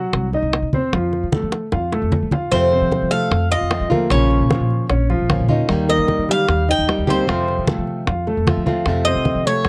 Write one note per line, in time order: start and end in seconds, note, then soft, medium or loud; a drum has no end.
0.00 0.27 F#3 medium
0.00 0.27 F#4 medium
0.13 0.42 C2 loud
0.13 high bongo medium
0.13 high conga soft
0.33 0.67 D#4 medium
0.33 0.67 D#5 medium
0.33 high bongo soft
0.33 high conga soft
0.42 0.62 C2 medium
0.53 high bongo medium
0.53 low bongo medium
0.53 high conga soft
0.62 0.82 C3 medium
0.73 0.90 C4 medium
0.73 0.90 C5 medium
0.73 high bongo soft
0.73 high conga medium
0.93 1.21 F2 loud
0.93 1.26 F3 medium
0.93 1.26 F4 medium
0.93 high bongo medium
0.93 high conga soft
1.13 high bongo soft
1.13 high conga soft
1.23 1.42 F3 medium
1.32 1.66 A3 medium
1.32 1.66 A4 medium
1.32 high bongo soft
1.32 high conga medium
1.42 1.61 F3 medium
1.52 high bongo medium
1.52 high conga soft
1.72 2.01 F2 medium
1.72 1.89 F4 medium
1.72 1.89 F5 medium
1.72 high bongo medium
1.72 high conga soft
1.92 2.25 A3 medium
1.92 2.26 A4 medium
1.92 high bongo medium
1.92 high conga soft
2.02 2.21 F2 medium
2.12 low bongo medium
2.12 high conga medium
2.22 2.41 F3 medium
2.31 2.65 F4 medium
2.31 2.65 F5 medium
2.31 low bongo medium
2.31 high conga medium
2.51 2.80 F2 medium
2.51 3.30 C3 medium
2.51 3.31 F3 medium
2.51 3.31 A3 medium
2.51 3.30 C4 medium
2.51 3.11 C5 medium
2.51 high bongo medium
2.51 high conga soft
2.55 3.31 F4 medium
2.72 3.05 C4 medium
2.72 3.05 C5 medium
2.72 high bongo soft
2.72 high conga soft
2.81 3.00 F3 medium
2.92 high bongo medium
2.92 high conga medium
3.02 3.21 F3 medium
3.11 3.44 A3 medium
3.11 3.44 A4 medium
3.11 3.51 F5 loud
3.11 high conga soft
3.31 3.60 F2 medium
3.31 muted nylon-string guitar stroke medium
3.31 high bongo medium
3.31 high conga soft
3.51 3.84 F4 medium
3.51 3.88 D#5 loud
3.51 3.84 F5 medium
3.51 high bongo soft
3.51 high conga soft
3.61 3.80 F2 medium
3.70 3.90 F3 soft
3.70 3.90 A3 soft
3.70 3.90 C4 soft
3.70 3.89 F4 soft
3.70 high bongo medium
3.70 low bongo medium
3.70 high conga soft
3.81 4.00 F3 medium
3.90 4.09 F3 medium
3.90 4.10 A3 medium
3.90 4.07 A#3 medium
3.90 4.10 C4 medium
3.90 4.09 F4 medium
3.90 4.07 A#4 medium
3.90 high bongo soft
3.90 high conga medium
4.10 4.39 A#1 medium
4.10 4.43 C#3 medium
4.10 4.89 F3 medium
4.10 4.90 A#3 medium
4.10 4.43 C#4 medium
4.10 4.89 C#4 medium
4.10 4.90 F4 medium
4.10 4.86 C#5 medium
4.10 high bongo medium
4.10 high conga soft
4.30 high bongo soft
4.30 high conga soft
4.41 4.59 A#2 medium
4.50 4.83 F3 medium
4.50 4.83 F4 medium
4.50 high bongo medium
4.50 high conga medium
4.60 4.79 A#2 medium
4.70 high conga soft
4.89 5.18 A#1 medium
4.89 5.06 C#4 medium
4.89 5.06 C#5 medium
4.89 muted nylon-string guitar stroke medium
4.89 high bongo medium
4.89 high conga soft
5.10 5.42 F3 medium
5.10 5.42 F4 medium
5.10 high bongo soft
5.10 high conga soft
5.19 5.38 A#1 medium
5.29 5.48 F3 soft
5.29 5.49 A#3 soft
5.29 5.49 C#4 soft
5.29 5.48 F4 medium
5.29 high bongo medium
5.29 low bongo medium
5.29 high conga medium
5.39 5.58 A#2 medium
5.49 5.69 A#3 medium
5.49 5.69 C#4 medium
5.49 5.82 D#4 medium
5.49 5.68 F4 medium
5.49 5.82 D#5 medium
5.49 high bongo soft
5.49 high conga medium
5.69 5.97 D#2 loud
5.69 6.47 D#3 medium
5.69 6.47 G3 medium
5.69 6.48 A#3 medium
5.69 6.48 D#4 medium
5.69 6.48 G4 medium
5.69 high bongo medium
5.69 high conga soft
5.89 6.22 A#3 medium
5.89 6.22 A#4 medium
5.89 6.30 D#5 medium
5.89 high bongo soft
5.89 high conga soft
5.99 6.18 D#3 medium
6.08 high bongo medium
6.08 high conga medium
6.19 6.38 D#3 medium
6.29 6.61 G3 medium
6.29 6.62 G4 medium
6.29 6.70 F5 loud
6.29 high conga soft
6.48 6.77 D#2 medium
6.48 muted nylon-string guitar stroke medium
6.48 high bongo medium
6.48 high conga soft
6.68 7.01 D#4 medium
6.68 7.01 D#5 medium
6.68 7.10 G5 loud
6.68 high bongo soft
6.68 high conga soft
6.79 6.97 D#2 medium
6.87 7.07 G3 soft
6.87 7.07 A#3 soft
6.87 7.07 D#4 soft
6.87 7.06 G4 soft
6.87 high bongo medium
6.87 low bongo medium
6.87 high conga soft
6.98 7.17 D#2 medium
7.07 7.27 G3 medium
7.07 7.27 A#3 medium
7.07 7.24 C4 medium
7.07 7.27 D#4 medium
7.07 7.27 G4 medium
7.07 7.25 C5 medium
7.07 7.65 C5 medium
7.07 high bongo soft
7.07 high conga medium
7.27 7.56 F2 medium
7.27 8.06 C3 medium
7.27 8.07 F3 medium
7.27 7.61 F3 medium
7.27 8.07 A3 medium
7.27 8.07 C4 medium
7.27 7.61 F4 medium
7.27 8.07 F4 medium
7.27 high bongo medium
7.27 high conga soft
7.48 high bongo soft
7.48 high conga soft
7.58 7.77 F3 medium
7.67 8.00 A3 medium
7.67 8.00 A4 medium
7.67 high bongo medium
7.67 high conga medium
7.78 7.97 F3 medium
7.87 high conga soft
8.07 8.35 F2 medium
8.07 8.24 F4 medium
8.07 8.24 F5 medium
8.07 muted nylon-string guitar stroke medium
8.07 high bongo medium
8.07 high conga soft
8.27 8.60 A3 medium
8.27 8.60 A4 medium
8.27 high bongo soft
8.27 high conga soft
8.37 8.56 F2 medium
8.47 8.66 F3 soft
8.47 8.66 A3 soft
8.47 8.65 C4 soft
8.47 8.65 F4 medium
8.47 high bongo medium
8.47 low bongo medium
8.47 high conga medium
8.57 8.76 F3 medium
8.66 8.86 F3 medium
8.66 8.86 A3 medium
8.66 8.86 C4 medium
8.66 8.85 F4 medium
8.66 8.99 F4 medium
8.66 8.99 F5 medium
8.66 high bongo soft
8.66 high conga medium
8.86 9.14 F2 medium
8.86 9.64 C3 medium
8.86 9.65 F3 medium
8.86 9.65 A3 medium
8.86 9.65 C4 medium
8.86 9.66 F4 medium
8.86 high bongo medium
8.86 high conga soft
9.05 9.39 C4 medium
9.05 9.39 C5 medium
9.05 9.46 D#5 medium
9.05 high bongo soft
9.05 high conga soft
9.16 9.34 F3 medium
9.25 high bongo medium
9.25 high conga medium
9.35 9.54 F3 medium
9.45 9.69 A3 medium
9.45 9.69 A4 medium
9.45 9.69 C#5 loud
9.45 high conga soft
9.65 9.69 F2 loud
9.65 muted nylon-string guitar stroke medium
9.65 high bongo medium
9.65 high conga soft